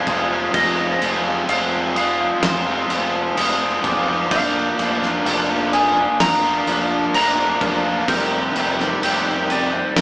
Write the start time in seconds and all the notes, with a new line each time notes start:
Already playing: F4 C5 F5 G#5
0.06 F1 F3 G#3 C4 F4 D#6, kick, crash
0.30 G#3 C4 F4
0.53 F1 F3 G#3 C4 F4 D#5 F6, kick, crash
1.01 F1 F3 G#3 C4 F4, crash
1.25 G#3 C4 F4
1.48 F1 F3 G#3 C4 F4 F5 F6, crash
1.72 G#3 C4 F4
1.96 F5 D#6, muted overdriven electric guitar stroke, crash
2.19 G#3 C4 F4, muted distorted electric guitar stroke
2.43 F1 C5 F6, snare, crash
2.66 G#3 C4 F4
2.90 F1 F3 G#3 C4 F4, crash
3.13 muted distorted electric guitar stroke
3.37 F1 F3 G#3 C4 F4 D#6, crash
3.60 G#3 C4 F4
3.84 F1 F3 G#3 C4 F4 D6, kick, crash
4.07 G#3 C4 F4
4.30 F1 F3 A#3 D4 F4 A#4 F5 C6 G6, kick, crash
4.78 F1 F3 A#3 D4 F4, crash
5.01 A#3 D4 F4, snare
5.24 F1 F3 A#3 D4 F4 F6, crash
5.49 A#3 D4 F4
5.72 G#5 D#6, muted overdriven electric guitar stroke, crash
5.95 A#3 D4 F4, muted distorted electric guitar stroke
6.19 F1 A#5 F6, snare, crash
6.43 A#3 D4 F4
6.66 F1 F3 A#3 D4 F4, crash
6.91 muted distorted electric guitar stroke
7.13 F1 F3 A#3 D4 F4 A#5 A#6, crash
7.37 A#3 D4 F4
7.61 F1 F3 A#3 D4 F4 F6, kick, crash
7.84 A#3 D4 F4
8.08 F1 C3 D#3 G3 C4 D#4 G4 A#4 G6, kick, crash
8.55 F1 D#3 G3 C4 G4, crash
8.78 G3 C4 G4, snare
9.01 F1 C3 D#3 G3 C4 G4 G6, crash
9.26 G3 C4 G4
9.49 D5 D#7, muted overdriven electric guitar stroke, crash
9.72 G3 C4 G4, muted distorted electric guitar stroke
9.96 F1 F6, snare, crash